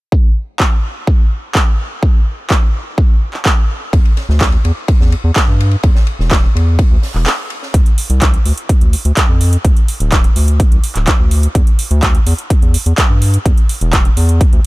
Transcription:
0.12 kick
0.60 kick, clap
1.07 kick
1.55 kick, clap
2.03 kick
2.50 kick, clap
2.98 kick
3.34 clap
3.45 kick, clap
3.93 E2, kick, ride
4.05 ride
4.17 snare, ride
4.29 D2, snare
4.41 kick, snare, clap, ride
4.52 ride
4.65 E2, ride
4.88 kick, ride
5.00 E2, snare
5.12 ride
5.24 E2
5.36 kick, snare, clap, ride
5.48 G2
5.60 ride
5.71 ride
5.83 E2, kick, ride
5.95 snare
6.07 ride
6.19 E1, snare
6.31 kick, snare, clap, ride
6.55 E2, ride
6.79 kick, ride
6.91 D2
7.03 snare, open hi-hat
7.15 E1, clap
7.26 snare, clap, ride
7.50 ride
7.63 snare
7.74 D2, kick, closed hi-hat
7.86 closed hi-hat
7.98 open hi-hat
8.10 C2, closed hi-hat
8.22 kick, clap, closed hi-hat
8.34 closed hi-hat
8.45 D2, open hi-hat
8.58 closed hi-hat
8.69 kick, closed hi-hat
8.81 D2, closed hi-hat
8.93 open hi-hat
9.05 D2, closed hi-hat
9.17 kick, clap, closed hi-hat
9.29 F2
9.41 open hi-hat
9.53 closed hi-hat
9.65 D2, kick, closed hi-hat
9.77 closed hi-hat
9.88 open hi-hat
10.00 D1, closed hi-hat
10.12 kick, clap, closed hi-hat
10.24 closed hi-hat
10.36 D2, open hi-hat
10.48 closed hi-hat
10.60 kick, closed hi-hat
10.72 C2, closed hi-hat
10.84 open hi-hat
10.96 D1, clap, closed hi-hat
11.07 kick, clap, closed hi-hat
11.19 D2
11.31 open hi-hat
11.43 closed hi-hat
11.55 E2, kick, closed hi-hat
11.67 closed hi-hat
11.79 open hi-hat
11.91 D2, closed hi-hat
12.03 kick, clap, closed hi-hat
12.15 closed hi-hat
12.26 E2, open hi-hat
12.38 closed hi-hat
12.50 kick, closed hi-hat
12.62 E2, closed hi-hat
12.74 open hi-hat
12.86 E2, closed hi-hat
12.98 kick, clap, closed hi-hat
13.10 G2
13.22 open hi-hat
13.34 closed hi-hat
13.45 E2, kick, closed hi-hat
13.58 closed hi-hat
13.69 open hi-hat
13.81 E1, closed hi-hat
13.93 kick, clap, closed hi-hat
14.05 closed hi-hat
14.17 E2, open hi-hat
14.29 closed hi-hat
14.41 kick, closed hi-hat
14.53 D2, closed hi-hat

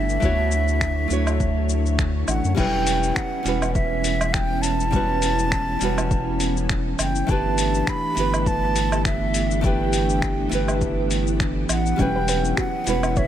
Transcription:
Already playing: G1 D3 G3 A3 B3 D4 E4 G4 B4 E5
0.09 cabasa
0.20 D2 F#3 A3 D4 E4 F#4 C#5, kick, cabasa
0.25 C#5
0.51 cabasa
0.68 cabasa
0.81 finger snap, kick, cabasa
1.08 D2 A3 D4 E4, cabasa
1.12 F#4 C#5
1.27 cabasa, low woodblock
1.40 kick, cabasa
1.69 cabasa
1.86 cabasa
1.99 finger snap, kick, cabasa
2.28 A1 F#5, cabasa, low woodblock
2.44 F#2, cabasa
2.55 E1 E3 F#3 G3 B3 C#4 E4 G5, kick, crash, cabasa
2.60 B4
2.87 open hi-hat, cabasa
3.03 cabasa
3.15 F#5, finger snap, kick, cabasa
3.43 E1 G3 C#4 E4 F#4, open hi-hat, cabasa
3.48 B4
3.62 cabasa, low woodblock
3.74 E5, kick, cabasa
4.04 open hi-hat, cabasa
4.21 cabasa, low woodblock
4.33 G5, finger snap, kick, cabasa
4.62 A5, open hi-hat, cabasa
4.80 cabasa
4.91 G3 C#4 E4, kick, cabasa
4.95 F#4 B4
5.22 open hi-hat, cabasa
5.39 cabasa
5.52 finger snap, kick, cabasa
5.79 E1 G3 C#4 E4, open hi-hat, cabasa
5.83 F#4 B4
5.98 cabasa, low woodblock
6.11 kick, cabasa
6.40 open hi-hat, cabasa
6.57 cabasa
6.69 finger snap, kick, cabasa
6.99 F#1 G5, open hi-hat, cabasa, low woodblock
7.15 cabasa
7.27 G1 A3 D4 E4 G4, kick, cabasa
7.31 G4 B4 A5
7.58 open hi-hat, cabasa
7.74 cabasa
7.87 B5, finger snap, kick, cabasa
8.15 G1 A3 D4 E4 G4, open hi-hat, cabasa
8.20 B4
8.34 cabasa, low woodblock
8.46 A5, kick, cabasa
8.76 open hi-hat, cabasa
8.92 cabasa, low woodblock
9.05 E5, finger snap, kick, cabasa
9.34 open hi-hat, cabasa
9.51 cabasa
9.61 A3 D4 E4 G5, kick, cabasa
9.65 G4 B4
9.93 open hi-hat, cabasa
10.09 cabasa
10.22 finger snap, kick, cabasa
10.49 G1 A3 D4 E4 G4, open hi-hat, cabasa
10.55 B4
10.68 cabasa, low woodblock
10.81 kick, cabasa
11.11 open hi-hat, cabasa
11.27 cabasa
11.40 finger snap, kick, cabasa
11.69 A1 F#5, open hi-hat, cabasa, low woodblock
11.86 cabasa
11.96 E1 G3 C#4 E4, kick, cabasa
12.00 F#3 B4 G5
12.16 B4
12.28 B4, open hi-hat, cabasa
12.45 cabasa
12.57 F#4 F#5, finger snap, kick, cabasa
12.84 E1 G3 C#4 E4 F#4, open hi-hat, cabasa
12.89 B4
13.03 cabasa, low woodblock
13.16 C#5 E5, kick, cabasa

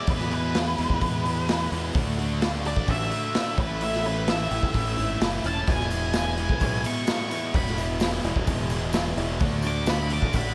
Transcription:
0.07 E2 B2 E3 G#3 B3 E4 G#4 B4, kick, open hi-hat
0.20 snare
0.31 E2 B2 E3 G#3 B3 E4 G#4 B4, open hi-hat
0.55 E2 B2 E3 G#3 B3 E4 G#4, snare, open hi-hat
0.77 E2 B2 E3 G#3 B3 E4 G#4, open hi-hat
0.90 E2, kick
1.01 E2 B2 E3 G#3 B3 E4 G#4, kick, open hi-hat
1.24 E2 B2 E3 G#3 B3 E4 G#4, open hi-hat
1.49 E2 B2 E3 G#3 B3 E4 G#4, snare, open hi-hat
1.70 E2 B2 E3 G#3 B3 E4 G#4, open hi-hat
1.95 D2 D3 A3 D4 F#4, kick, open hi-hat
2.18 D3 A3 D4 F#4, open hi-hat
2.41 D3 A3 D4 F#4, snare, open hi-hat
2.65 D3 A3 D4 F#4 D5, open hi-hat
2.76 A1, kick
2.88 A1 D3 A3 D4 F#4 E5, kick, open hi-hat
3.11 D3 A3 D4 F#4, open hi-hat
3.35 D3 A3 D4 F#4, snare, open hi-hat
3.58 A1 A2 E3 A3 C#4 E4 B4, kick, open hi-hat
3.81 A2 E3 A3 C#4 E4 E5, open hi-hat
3.93 snare
4.04 A2 E3 A3 C#4 E4 B4, open hi-hat
4.27 A2 E3 A3 C#4 E4 E5, snare, open hi-hat
4.51 A1 A2 E3 A3 C#4 E4, open hi-hat
4.63 A1, kick
4.74 A1 A2 E3 A3 C#4 E4, kick, open hi-hat
4.97 G#1 A2 E3 A3 C#4 E4, open hi-hat
5.20 F#1 A2 E3 A3 C#4 E4, snare, open hi-hat
5.44 E1 A2 E3 A3 C#4 E4 A5, open hi-hat
5.67 E1 E2 B2 E3 G#3 B3 E4 G#5, kick, open hi-hat, tambourine
5.80 snare
5.90 E2 B2 E3 G#3 B3 E4, open hi-hat, tambourine
6.13 E2 B2 E3 G#3 B3 E4 G#5, snare, open hi-hat, tambourine
6.38 E2 B2 E3 G#3 B3 E4, open hi-hat, tambourine
6.49 B1, kick
6.61 B1 E2 B2 E3 G#3 B3 E4, kick, open hi-hat, tambourine
6.84 E2 B2 E3 G#3 B3 E4 C#6, open hi-hat, tambourine
7.07 E2 B2 E3 G#3 B3 E4, snare, open hi-hat, tambourine
7.31 E2 B2 E3 G#3 B3 E4, open hi-hat, tambourine
7.53 E1 E2 B2 E3 G#3 B3 E4 B5, kick, open hi-hat, tambourine
7.67 snare
7.77 E2 B2 E3 G#3 B3 E4, open hi-hat, tambourine
8.00 E2 B2 E3 G#3 B3 E4, snare, open hi-hat, tambourine
8.23 E1 E2 B2 E3 G#3 B3 E4, open hi-hat, tambourine
8.36 E1, kick
8.46 E1 E2 B2 E3 G#3 B3 E4, kick, open hi-hat, tambourine
8.70 E2 B2 E3 G#3 B3 E4, open hi-hat, tambourine
8.93 E2 B2 E3 G#3 B3 E4, snare, open hi-hat, tambourine
9.17 E1 E2 B2 E3 G#3 B3 E4, open hi-hat
9.40 D2 D3 A3 D4 F#4, kick, open hi-hat, tambourine
9.62 D3 A3 D4 F#4, open hi-hat, tambourine
9.67 D6
9.86 D3 A3 D4 F#4 B5, snare, open hi-hat, tambourine
10.09 D3 A3 D4 F#4 D6, open hi-hat, tambourine
10.22 A1, kick
10.33 A1 D3 A3 D4 F#4 B5, kick, open hi-hat, tambourine

